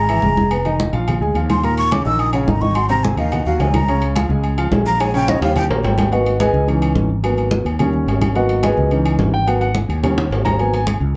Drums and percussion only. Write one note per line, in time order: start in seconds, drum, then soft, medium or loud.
0.09 high conga soft
0.09 low agogo loud
0.22 high conga medium
0.37 high conga medium
0.51 high conga soft
0.51 low agogo loud
0.65 high conga soft
0.65 low agogo medium
0.80 high conga medium
0.93 high conga soft
0.93 low agogo medium
1.08 high conga soft
1.08 low conga medium
1.08 low agogo loud
1.22 high conga soft
1.35 high conga soft
1.35 low agogo medium
1.50 high conga medium
1.50 low agogo loud
1.64 high conga soft
1.64 low agogo medium
1.78 high conga soft
1.78 low agogo medium
1.91 high conga medium
1.91 low agogo loud
2.06 high conga soft
2.19 high conga soft
2.19 low agogo medium
2.33 high conga soft
2.33 low agogo loud
2.48 high conga medium
2.62 high conga medium
2.75 high conga soft
2.75 low agogo loud
2.89 high conga soft
2.89 low agogo medium
3.05 high conga loud
3.17 high conga soft
3.17 low agogo medium
3.32 high conga soft
3.32 low conga medium
3.32 low agogo loud
3.47 high conga soft
3.60 high conga soft
3.60 low timbale medium
3.60 low agogo medium
3.74 high conga medium
3.74 low agogo loud
3.88 high conga soft
3.88 low agogo loud
4.02 high conga soft
4.02 low agogo medium
4.16 high conga medium
4.16 low agogo loud
4.30 high conga soft
4.44 high conga soft
4.44 low agogo medium
4.58 high conga soft
4.58 low agogo loud
4.72 high conga medium
4.72 low timbale medium
5.00 high conga soft
5.00 high timbale medium
5.00 low agogo loud
5.14 high conga soft
5.14 low agogo medium
5.28 high conga medium
5.28 high timbale medium
5.42 high conga soft
5.42 high timbale medium
5.42 low agogo medium
5.56 high conga soft
5.56 low conga medium
5.56 low agogo loud
5.69 high conga soft
5.69 low timbale loud
5.83 high conga soft
5.83 low timbale loud
5.83 low agogo medium
5.98 high conga medium
5.98 low timbale medium
5.98 low agogo loud
6.12 high conga soft
6.12 low agogo medium
6.26 high conga soft
6.26 low agogo medium
6.40 high conga medium
6.40 low agogo loud
6.54 high conga soft
6.68 high conga soft
6.68 low agogo medium
6.82 high conga soft
6.82 low agogo loud
6.95 high conga medium
7.24 high conga soft
7.24 low agogo loud
7.37 high conga soft
7.37 low agogo medium
7.51 high conga medium
7.66 high conga soft
7.66 low agogo medium
7.79 high conga soft
7.79 low conga medium
7.79 low agogo loud
7.93 high conga soft
8.08 high conga soft
8.08 low timbale medium
8.08 low agogo medium
8.21 high conga medium
8.21 low agogo loud
8.35 high conga soft
8.35 low agogo medium
8.49 high conga soft
8.49 low agogo medium
8.63 high conga medium
8.63 low agogo loud
8.77 high conga soft
8.91 high conga soft
8.91 low agogo medium
9.05 high conga soft
9.05 low agogo loud
9.19 high conga medium
9.19 low timbale medium
9.47 high conga soft
9.47 low agogo loud
9.61 high conga soft
9.61 low agogo medium
9.75 high conga medium
9.90 high conga soft
9.90 low agogo medium
10.03 high conga soft
10.03 low conga medium
10.03 high timbale medium
10.03 low agogo loud
10.18 high conga soft
10.18 low conga medium
10.18 high timbale loud
10.31 high conga soft
10.31 low timbale loud
10.31 low agogo medium
10.45 high conga medium
10.45 low timbale medium
10.45 low agogo loud
10.59 high conga soft
10.59 low agogo medium
10.73 high conga soft
10.73 low agogo medium
10.87 high conga medium
10.87 low agogo loud
11.01 high conga soft